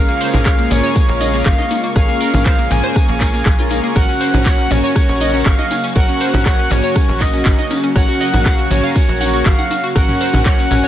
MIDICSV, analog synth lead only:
0, 0, Header, 1, 2, 480
1, 0, Start_track
1, 0, Tempo, 500000
1, 1880, Time_signature, 4, 2, 24, 8
1, 10444, End_track
2, 0, Start_track
2, 0, Title_t, "Analog synth lead"
2, 0, Program_c, 0, 81
2, 0, Note_on_c, 0, 77, 103
2, 407, Note_off_c, 0, 77, 0
2, 441, Note_on_c, 0, 77, 103
2, 681, Note_on_c, 0, 73, 90
2, 696, Note_off_c, 0, 77, 0
2, 915, Note_off_c, 0, 73, 0
2, 921, Note_on_c, 0, 73, 95
2, 1367, Note_off_c, 0, 73, 0
2, 1401, Note_on_c, 0, 77, 99
2, 1739, Note_off_c, 0, 77, 0
2, 1882, Note_on_c, 0, 77, 110
2, 2327, Note_off_c, 0, 77, 0
2, 2360, Note_on_c, 0, 77, 108
2, 2599, Note_on_c, 0, 80, 111
2, 2614, Note_off_c, 0, 77, 0
2, 3560, Note_off_c, 0, 80, 0
2, 3800, Note_on_c, 0, 78, 122
2, 4246, Note_off_c, 0, 78, 0
2, 4280, Note_on_c, 0, 78, 115
2, 4520, Note_on_c, 0, 73, 99
2, 4534, Note_off_c, 0, 78, 0
2, 4755, Note_off_c, 0, 73, 0
2, 4760, Note_on_c, 0, 73, 101
2, 5241, Note_on_c, 0, 77, 100
2, 5255, Note_off_c, 0, 73, 0
2, 5605, Note_off_c, 0, 77, 0
2, 5721, Note_on_c, 0, 78, 111
2, 6167, Note_off_c, 0, 78, 0
2, 6201, Note_on_c, 0, 78, 109
2, 6439, Note_on_c, 0, 73, 98
2, 6454, Note_off_c, 0, 78, 0
2, 6919, Note_on_c, 0, 75, 88
2, 6934, Note_off_c, 0, 73, 0
2, 7400, Note_off_c, 0, 75, 0
2, 7640, Note_on_c, 0, 78, 115
2, 8087, Note_off_c, 0, 78, 0
2, 8119, Note_on_c, 0, 78, 113
2, 8343, Note_off_c, 0, 78, 0
2, 8362, Note_on_c, 0, 73, 97
2, 8469, Note_off_c, 0, 73, 0
2, 8601, Note_on_c, 0, 73, 100
2, 9079, Note_on_c, 0, 77, 109
2, 9094, Note_off_c, 0, 73, 0
2, 9444, Note_off_c, 0, 77, 0
2, 9559, Note_on_c, 0, 78, 112
2, 10006, Note_off_c, 0, 78, 0
2, 10040, Note_on_c, 0, 78, 109
2, 10444, Note_off_c, 0, 78, 0
2, 10444, End_track
0, 0, End_of_file